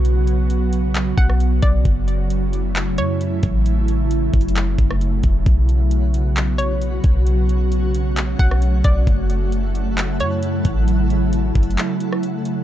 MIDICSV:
0, 0, Header, 1, 6, 480
1, 0, Start_track
1, 0, Tempo, 451128
1, 51, Time_signature, 4, 2, 24, 8
1, 13448, End_track
2, 0, Start_track
2, 0, Title_t, "Synth pluck"
2, 0, Program_c, 0, 84
2, 1251, Note_on_c, 0, 78, 81
2, 1702, Note_off_c, 0, 78, 0
2, 1728, Note_on_c, 0, 74, 76
2, 1958, Note_off_c, 0, 74, 0
2, 3173, Note_on_c, 0, 73, 84
2, 3850, Note_off_c, 0, 73, 0
2, 7005, Note_on_c, 0, 73, 83
2, 7685, Note_off_c, 0, 73, 0
2, 8931, Note_on_c, 0, 78, 81
2, 9382, Note_off_c, 0, 78, 0
2, 9410, Note_on_c, 0, 74, 78
2, 9639, Note_off_c, 0, 74, 0
2, 10857, Note_on_c, 0, 73, 85
2, 11532, Note_off_c, 0, 73, 0
2, 13448, End_track
3, 0, Start_track
3, 0, Title_t, "Synth texture"
3, 0, Program_c, 1, 99
3, 5813, Note_on_c, 1, 78, 89
3, 5814, Note_on_c, 1, 71, 74
3, 5816, Note_on_c, 1, 61, 77
3, 7714, Note_off_c, 1, 71, 0
3, 7735, Note_on_c, 1, 73, 72
3, 9615, Note_off_c, 1, 61, 0
3, 9634, Note_off_c, 1, 73, 0
3, 9651, Note_on_c, 1, 69, 73
3, 9652, Note_on_c, 1, 64, 77
3, 13448, Note_off_c, 1, 64, 0
3, 13448, Note_off_c, 1, 69, 0
3, 13448, Note_off_c, 1, 78, 0
3, 13448, End_track
4, 0, Start_track
4, 0, Title_t, "Ambient pad"
4, 0, Program_c, 2, 92
4, 0, Note_on_c, 2, 49, 80
4, 0, Note_on_c, 2, 54, 73
4, 0, Note_on_c, 2, 59, 71
4, 0, Note_on_c, 2, 66, 85
4, 1934, Note_off_c, 2, 59, 0
4, 1934, Note_off_c, 2, 66, 0
4, 1972, Note_on_c, 2, 64, 89
4, 1973, Note_on_c, 2, 57, 69
4, 5773, Note_off_c, 2, 64, 0
4, 5774, Note_off_c, 2, 57, 0
4, 5811, Note_on_c, 2, 59, 70
4, 5813, Note_on_c, 2, 66, 86
4, 7712, Note_off_c, 2, 59, 0
4, 7733, Note_on_c, 2, 57, 76
4, 9610, Note_off_c, 2, 49, 0
4, 9610, Note_off_c, 2, 54, 0
4, 9614, Note_off_c, 2, 66, 0
4, 9653, Note_on_c, 2, 49, 82
4, 9653, Note_on_c, 2, 64, 91
4, 9655, Note_on_c, 2, 54, 70
4, 13448, Note_off_c, 2, 49, 0
4, 13448, Note_off_c, 2, 54, 0
4, 13448, Note_off_c, 2, 57, 0
4, 13448, Note_off_c, 2, 64, 0
4, 13448, End_track
5, 0, Start_track
5, 0, Title_t, "808-style bass"
5, 0, Program_c, 3, 38
5, 0, Note_on_c, 3, 35, 102
5, 1209, Note_off_c, 3, 35, 0
5, 1251, Note_on_c, 3, 35, 103
5, 1712, Note_off_c, 3, 35, 0
5, 1732, Note_on_c, 3, 35, 103
5, 1962, Note_off_c, 3, 35, 0
5, 1971, Note_on_c, 3, 30, 110
5, 3172, Note_on_c, 3, 42, 105
5, 3188, Note_off_c, 3, 30, 0
5, 3628, Note_off_c, 3, 42, 0
5, 3652, Note_on_c, 3, 33, 104
5, 4573, Note_off_c, 3, 33, 0
5, 4614, Note_on_c, 3, 30, 102
5, 5073, Note_off_c, 3, 30, 0
5, 5092, Note_on_c, 3, 30, 110
5, 5552, Note_off_c, 3, 30, 0
5, 5573, Note_on_c, 3, 28, 107
5, 5803, Note_off_c, 3, 28, 0
5, 5812, Note_on_c, 3, 35, 120
5, 7449, Note_off_c, 3, 35, 0
5, 7492, Note_on_c, 3, 35, 105
5, 8889, Note_off_c, 3, 35, 0
5, 8931, Note_on_c, 3, 35, 104
5, 9392, Note_off_c, 3, 35, 0
5, 9412, Note_on_c, 3, 35, 107
5, 9642, Note_off_c, 3, 35, 0
5, 9652, Note_on_c, 3, 30, 112
5, 10852, Note_on_c, 3, 42, 99
5, 10867, Note_off_c, 3, 30, 0
5, 11307, Note_off_c, 3, 42, 0
5, 11332, Note_on_c, 3, 33, 108
5, 12254, Note_off_c, 3, 33, 0
5, 12294, Note_on_c, 3, 30, 105
5, 12523, Note_off_c, 3, 30, 0
5, 13448, End_track
6, 0, Start_track
6, 0, Title_t, "Drums"
6, 51, Note_on_c, 9, 42, 72
6, 157, Note_off_c, 9, 42, 0
6, 290, Note_on_c, 9, 42, 67
6, 397, Note_off_c, 9, 42, 0
6, 531, Note_on_c, 9, 42, 78
6, 637, Note_off_c, 9, 42, 0
6, 773, Note_on_c, 9, 42, 82
6, 880, Note_off_c, 9, 42, 0
6, 1011, Note_on_c, 9, 42, 82
6, 1016, Note_on_c, 9, 39, 115
6, 1117, Note_off_c, 9, 42, 0
6, 1123, Note_off_c, 9, 39, 0
6, 1251, Note_on_c, 9, 36, 99
6, 1251, Note_on_c, 9, 42, 69
6, 1357, Note_off_c, 9, 36, 0
6, 1357, Note_off_c, 9, 42, 0
6, 1379, Note_on_c, 9, 37, 95
6, 1485, Note_off_c, 9, 37, 0
6, 1492, Note_on_c, 9, 42, 71
6, 1599, Note_off_c, 9, 42, 0
6, 1729, Note_on_c, 9, 42, 97
6, 1732, Note_on_c, 9, 36, 100
6, 1835, Note_off_c, 9, 42, 0
6, 1838, Note_off_c, 9, 36, 0
6, 1970, Note_on_c, 9, 42, 69
6, 1971, Note_on_c, 9, 36, 106
6, 2077, Note_off_c, 9, 42, 0
6, 2078, Note_off_c, 9, 36, 0
6, 2211, Note_on_c, 9, 42, 66
6, 2317, Note_off_c, 9, 42, 0
6, 2451, Note_on_c, 9, 42, 79
6, 2557, Note_off_c, 9, 42, 0
6, 2693, Note_on_c, 9, 42, 81
6, 2799, Note_off_c, 9, 42, 0
6, 2931, Note_on_c, 9, 42, 80
6, 2936, Note_on_c, 9, 39, 114
6, 3037, Note_off_c, 9, 42, 0
6, 3043, Note_off_c, 9, 39, 0
6, 3171, Note_on_c, 9, 42, 72
6, 3277, Note_off_c, 9, 42, 0
6, 3412, Note_on_c, 9, 42, 73
6, 3519, Note_off_c, 9, 42, 0
6, 3648, Note_on_c, 9, 42, 92
6, 3652, Note_on_c, 9, 36, 102
6, 3754, Note_off_c, 9, 42, 0
6, 3758, Note_off_c, 9, 36, 0
6, 3891, Note_on_c, 9, 42, 75
6, 3998, Note_off_c, 9, 42, 0
6, 4131, Note_on_c, 9, 42, 65
6, 4237, Note_off_c, 9, 42, 0
6, 4370, Note_on_c, 9, 42, 78
6, 4477, Note_off_c, 9, 42, 0
6, 4612, Note_on_c, 9, 42, 49
6, 4613, Note_on_c, 9, 36, 105
6, 4691, Note_off_c, 9, 42, 0
6, 4691, Note_on_c, 9, 42, 66
6, 4720, Note_off_c, 9, 36, 0
6, 4771, Note_off_c, 9, 42, 0
6, 4771, Note_on_c, 9, 42, 78
6, 4852, Note_off_c, 9, 42, 0
6, 4852, Note_on_c, 9, 42, 82
6, 4857, Note_on_c, 9, 39, 116
6, 4958, Note_off_c, 9, 42, 0
6, 4964, Note_off_c, 9, 39, 0
6, 5091, Note_on_c, 9, 36, 101
6, 5091, Note_on_c, 9, 42, 70
6, 5197, Note_off_c, 9, 36, 0
6, 5197, Note_off_c, 9, 42, 0
6, 5219, Note_on_c, 9, 37, 97
6, 5326, Note_off_c, 9, 37, 0
6, 5333, Note_on_c, 9, 42, 71
6, 5439, Note_off_c, 9, 42, 0
6, 5568, Note_on_c, 9, 42, 94
6, 5572, Note_on_c, 9, 36, 105
6, 5675, Note_off_c, 9, 42, 0
6, 5678, Note_off_c, 9, 36, 0
6, 5812, Note_on_c, 9, 36, 113
6, 5812, Note_on_c, 9, 42, 69
6, 5918, Note_off_c, 9, 36, 0
6, 5918, Note_off_c, 9, 42, 0
6, 6051, Note_on_c, 9, 42, 65
6, 6158, Note_off_c, 9, 42, 0
6, 6290, Note_on_c, 9, 42, 79
6, 6396, Note_off_c, 9, 42, 0
6, 6533, Note_on_c, 9, 42, 77
6, 6640, Note_off_c, 9, 42, 0
6, 6771, Note_on_c, 9, 42, 78
6, 6777, Note_on_c, 9, 39, 111
6, 6878, Note_off_c, 9, 42, 0
6, 6883, Note_off_c, 9, 39, 0
6, 7011, Note_on_c, 9, 42, 73
6, 7118, Note_off_c, 9, 42, 0
6, 7251, Note_on_c, 9, 42, 71
6, 7358, Note_off_c, 9, 42, 0
6, 7488, Note_on_c, 9, 42, 92
6, 7492, Note_on_c, 9, 36, 100
6, 7594, Note_off_c, 9, 42, 0
6, 7598, Note_off_c, 9, 36, 0
6, 7731, Note_on_c, 9, 42, 73
6, 7837, Note_off_c, 9, 42, 0
6, 7971, Note_on_c, 9, 42, 65
6, 8078, Note_off_c, 9, 42, 0
6, 8211, Note_on_c, 9, 42, 80
6, 8317, Note_off_c, 9, 42, 0
6, 8453, Note_on_c, 9, 42, 81
6, 8560, Note_off_c, 9, 42, 0
6, 8691, Note_on_c, 9, 42, 83
6, 8697, Note_on_c, 9, 39, 116
6, 8798, Note_off_c, 9, 42, 0
6, 8803, Note_off_c, 9, 39, 0
6, 8931, Note_on_c, 9, 36, 97
6, 8931, Note_on_c, 9, 42, 69
6, 9037, Note_off_c, 9, 36, 0
6, 9037, Note_off_c, 9, 42, 0
6, 9059, Note_on_c, 9, 37, 101
6, 9165, Note_off_c, 9, 37, 0
6, 9171, Note_on_c, 9, 42, 74
6, 9277, Note_off_c, 9, 42, 0
6, 9408, Note_on_c, 9, 42, 96
6, 9412, Note_on_c, 9, 36, 99
6, 9515, Note_off_c, 9, 42, 0
6, 9518, Note_off_c, 9, 36, 0
6, 9651, Note_on_c, 9, 42, 71
6, 9652, Note_on_c, 9, 36, 111
6, 9758, Note_off_c, 9, 36, 0
6, 9758, Note_off_c, 9, 42, 0
6, 9892, Note_on_c, 9, 42, 65
6, 9998, Note_off_c, 9, 42, 0
6, 10132, Note_on_c, 9, 42, 76
6, 10238, Note_off_c, 9, 42, 0
6, 10374, Note_on_c, 9, 42, 80
6, 10481, Note_off_c, 9, 42, 0
6, 10612, Note_on_c, 9, 42, 82
6, 10618, Note_on_c, 9, 39, 117
6, 10718, Note_off_c, 9, 42, 0
6, 10724, Note_off_c, 9, 39, 0
6, 10852, Note_on_c, 9, 42, 73
6, 10958, Note_off_c, 9, 42, 0
6, 11093, Note_on_c, 9, 42, 74
6, 11199, Note_off_c, 9, 42, 0
6, 11329, Note_on_c, 9, 42, 91
6, 11332, Note_on_c, 9, 36, 96
6, 11436, Note_off_c, 9, 42, 0
6, 11439, Note_off_c, 9, 36, 0
6, 11573, Note_on_c, 9, 42, 74
6, 11679, Note_off_c, 9, 42, 0
6, 11812, Note_on_c, 9, 42, 63
6, 11919, Note_off_c, 9, 42, 0
6, 12052, Note_on_c, 9, 42, 82
6, 12159, Note_off_c, 9, 42, 0
6, 12292, Note_on_c, 9, 42, 49
6, 12294, Note_on_c, 9, 36, 99
6, 12373, Note_off_c, 9, 42, 0
6, 12373, Note_on_c, 9, 42, 66
6, 12400, Note_off_c, 9, 36, 0
6, 12454, Note_off_c, 9, 42, 0
6, 12454, Note_on_c, 9, 42, 79
6, 12533, Note_off_c, 9, 42, 0
6, 12533, Note_on_c, 9, 42, 82
6, 12538, Note_on_c, 9, 39, 119
6, 12639, Note_off_c, 9, 42, 0
6, 12644, Note_off_c, 9, 39, 0
6, 12772, Note_on_c, 9, 42, 72
6, 12878, Note_off_c, 9, 42, 0
6, 12901, Note_on_c, 9, 37, 95
6, 13008, Note_off_c, 9, 37, 0
6, 13014, Note_on_c, 9, 42, 74
6, 13121, Note_off_c, 9, 42, 0
6, 13250, Note_on_c, 9, 42, 88
6, 13357, Note_off_c, 9, 42, 0
6, 13448, End_track
0, 0, End_of_file